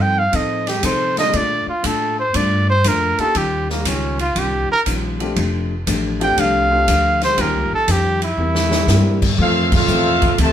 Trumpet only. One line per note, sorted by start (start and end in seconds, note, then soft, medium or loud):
0.01 0.20 G5 loud
0.19 0.37 F5 medium
0.36 0.70 D#5 medium
0.68 0.87 G4 medium
0.85 1.18 C5 medium
1.18 1.38 D#5 loud
1.36 1.68 D5 medium
1.69 1.88 F4 medium
1.86 2.19 A4 medium
2.19 2.38 C5 medium
2.36 2.69 D5 medium
2.70 2.89 C5 loud
2.88 3.22 A#4 medium
3.20 3.39 A4 medium
3.37 3.70 G4 medium
3.71 3.89 A#3 medium
3.88 4.20 C#4 medium
4.21 4.40 F4 medium
4.39 4.71 G4 medium
4.72 4.81 A#4 loud
6.23 6.41 G5 medium
6.40 7.23 F5 loud
7.24 7.42 C5 medium
7.41 7.73 A#4 medium
7.74 7.93 A4 medium
7.91 8.23 G4 medium
8.23 9.27 E4 medium